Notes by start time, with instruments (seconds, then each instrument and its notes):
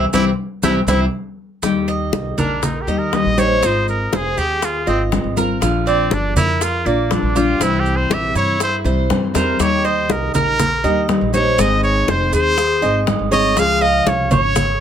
0.13 upright bass C2, nylon-string guitar E3 G3 C4, cuban tres C4 E4 G4, trumpet E4, low bongo, high conga, maracas
0.62 upright bass C2, nylon-string guitar E3 G3 C4, cuban tres C4 E4 G4, trumpet E4, low bongo, high conga, maracas
0.87 upright bass C2, nylon-string guitar E3 G3 C4, cuban tres C4 E4 G4, trumpet E4, low bongo, high conga, maracas
1.62 upright bass D#2, nylon-string guitar D#3 G3 A#3 D#4 G4, cuban tres G4, high bongo, high conga, maracas
1.88 cuban tres D#5, high conga, maracas
2.13 high bongo, high conga, maracas
2.37 upright bass A#1, trumpet D4, cuban tres A#4, high conga, low conga, maracas
2.63 trumpet D#4, muted nylon-string guitar stroke, high bongo, high conga, low conga, maracas
2.82 trumpet G4
2.87 upright bass D#2, nylon-string guitar G3 A#3 D#4 G4, cuban tres D#5, high conga, maracas
2.99 trumpet A#4
3.13 nylon-string guitar G3 A#3 D#4 G4, trumpet D#5, high bongo, low bongo, high conga, maracas
3.25 upright bass A#1
3.37 nylon-string guitar G3 A#3 D#4 G4, cuban tres C5, trumpet C#5, high conga, maracas
3.62 upright bass G#1, nylon-string guitar G#3 C4 F4, cuban tres D#4, high bongo, high conga, maracas
3.66 trumpet C5
3.88 trumpet A#4, high conga, maracas
4.12 upright bass F1, trumpet G#4, cuban tres C5, high bongo, high conga, maracas
4.37 upright bass D#2, trumpet G4, cuban tres G#4, high bongo, maracas
4.62 trumpet F4, muted nylon-string guitar stroke, high bongo, high conga, maracas
4.87 upright bass G#1, nylon-string guitar C4 F4, trumpet C4, cuban tres D#5, high bongo, high conga, maracas
5.12 nylon-string guitar G#3 C4 F4, high bongo, low bongo, high conga, maracas
5.24 upright bass G#1
5.36 nylon-string guitar C4 F4, cuban tres A#4, high bongo, high conga, maracas
5.60 upright bass A#1, nylon-string guitar F3 A#3 D4 F4, cuban tres F4, high bongo, high conga, maracas
5.87 trumpet C4, cuban tres D5, high conga, maracas
6.11 upright bass G1, trumpet D4, high bongo, high conga, maracas
6.36 upright bass F2, trumpet E4, cuban tres A#4, high conga, low conga, maracas
6.61 trumpet F4, muted nylon-string guitar stroke, high bongo, high conga, maracas
6.85 upright bass A#1, trumpet A#3, nylon-string guitar A#3 D4 F4, cuban tres D5, high conga, maracas
7.10 nylon-string guitar F3 A#3 D4 F4, trumpet D4, high bongo, low bongo, high conga, maracas
7.23 upright bass A#1
7.35 nylon-string guitar A#3 D4 F4, trumpet F4, cuban tres G4, high conga, maracas
7.59 upright bass C2, nylon-string guitar C3 E3 G3 C4 E4, cuban tres C4, trumpet E4, high bongo, high conga, maracas
7.80 trumpet G4
7.86 high conga, maracas
7.97 trumpet C5
8.10 upright bass A#1, cuban tres G4, trumpet E5, high bongo, high conga, maracas
8.35 upright bass G2, cuban tres E4, trumpet C#5, high bongo, maracas
8.59 trumpet C5, muted nylon-string guitar stroke, high bongo, high conga, maracas
8.84 upright bass C2, nylon-string guitar E3 G3 C4 E4, cuban tres C5, high bongo, high conga, maracas
9.10 upright bass G2, nylon-string guitar E3 G3 C4 E4, high bongo, low bongo, high conga, maracas
9.34 upright bass E2, nylon-string guitar E3 G3 C4 E4, cuban tres A#4, trumpet C5, high bongo, high conga, maracas
9.59 upright bass D#2, nylon-string guitar D#3 G3 A#3 D#4 G4, cuban tres G4, trumpet C#5, high bongo, high conga, maracas
9.85 trumpet C5, cuban tres D#5, high conga, maracas
10.09 upright bass C2, trumpet A#4, high bongo, high conga, maracas
10.34 upright bass A#1, trumpet A#4, cuban tres A#4, high conga, low conga, maracas
10.59 muted nylon-string guitar stroke, high bongo, high conga, low conga, maracas
10.84 upright bass D#2, nylon-string guitar G3 A#3 D#4 G4, cuban tres D#5, high conga, maracas
11.08 nylon-string guitar G3 A#3 D#4 G4, high bongo, low bongo, high conga, maracas
11.21 upright bass A#1
11.33 nylon-string guitar G3 A#3 D#4 G4, cuban tres C5, trumpet C#5, high conga, maracas
11.58 upright bass G#1, nylon-string guitar D#3 G#3 C4 D#4 G#4, cuban tres D#4, trumpet D#5, high bongo, high conga, maracas
11.83 trumpet C#5, high conga, maracas
12.08 upright bass F1, cuban tres C5, trumpet C5, high bongo, high conga, maracas
12.33 upright bass D#2, cuban tres G#4, trumpet C5, high bongo, maracas
12.57 muted nylon-string guitar stroke, high bongo, high conga, maracas
12.81 upright bass G#1, nylon-string guitar G#3 C4 D#4 G#4, cuban tres D#5, high bongo, high conga, maracas
13.06 nylon-string guitar G#3 C4 D#4 G#4, high bongo, low bongo, high conga, maracas
13.19 upright bass G#1
13.31 nylon-string guitar G#3 C4 D#4 G#4, cuban tres C#5, trumpet D#5, high bongo, high conga, maracas
13.56 upright bass C#2, nylon-string guitar C#3 F3 G#3 C#4 F4, cuban tres G#4, trumpet F5, high bongo, high conga, maracas
13.81 trumpet D#5, cuban tres F5, high conga, maracas
14.06 upright bass C2, trumpet C#5, high bongo, high conga, maracas
14.31 upright bass G#1, cuban tres C#5, trumpet C#5, high conga, low conga, maracas
14.55 muted nylon-string guitar stroke, high bongo, high conga, low conga, maracas